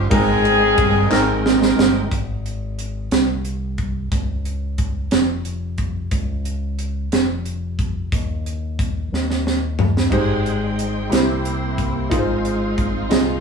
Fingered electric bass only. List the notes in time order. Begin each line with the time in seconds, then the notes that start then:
0.12 G#1
0.78 G1
1.11 G#1
1.78 G1
2.12 G#1
3.12 C2
4.12 C#2
5.12 F1
6.11 C#2
7.12 F1
8.12 D#2
9.12 D#2
10.12 G#1
11.11 C2
12.12 G#1
13.11 C2